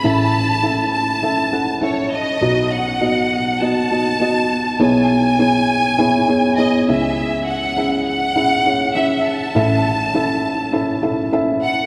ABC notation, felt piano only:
X:1
M:4/4
L:1/8
Q:1/4=101
K:Alyd
V:1 name="Felt piano"
[CEAe]2 [CEAe]2 [CEAe] [CEAf] [CEAe]2 | [B,DFd]2 [B,DFd]2 [B,DFd] [B,DFd] [B,DFd]2 | [B,EGc]2 [B,EGc]2 [B,EGc] [B,EGc] [B,EGc] [CEGe]- | [CEGe] z [CEGe]2 [CEGe] [CEGc] [CEGe]2 |
[CEAe]2 [CEAe]2 [CEAe] [CEAe] [CEAe]2 |]
V:2 name="Felt piano" clef=bass
[A,,,A,,]8 | [B,,,B,,]8 | [B,,,B,,]6- [B,,,B,,] [C,,C,]- | [C,,C,]6- [C,,C,] z |
[A,,,A,,]8 |]